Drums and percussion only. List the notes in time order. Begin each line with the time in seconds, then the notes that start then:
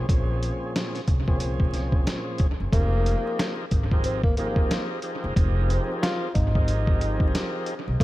0.09 kick, closed hi-hat
0.43 closed hi-hat
0.76 snare, closed hi-hat
0.95 snare, closed hi-hat
1.08 kick, closed hi-hat
1.28 kick
1.40 closed hi-hat
1.60 kick
1.74 snare, closed hi-hat
1.92 kick
2.07 snare, closed hi-hat
2.38 kick, closed hi-hat
2.73 kick, closed hi-hat
3.06 closed hi-hat
3.39 snare, closed hi-hat
3.71 kick, closed hi-hat
3.91 kick
4.04 closed hi-hat
4.24 kick
4.37 closed hi-hat
4.56 kick
4.71 snare, closed hi-hat
5.02 closed hi-hat
5.36 kick, closed hi-hat
5.70 closed hi-hat
6.03 snare, closed hi-hat
6.35 kick, closed hi-hat
6.55 kick
6.68 closed hi-hat
6.87 kick
7.01 closed hi-hat
7.20 kick
7.35 snare, closed hi-hat
7.66 closed hi-hat
8.00 kick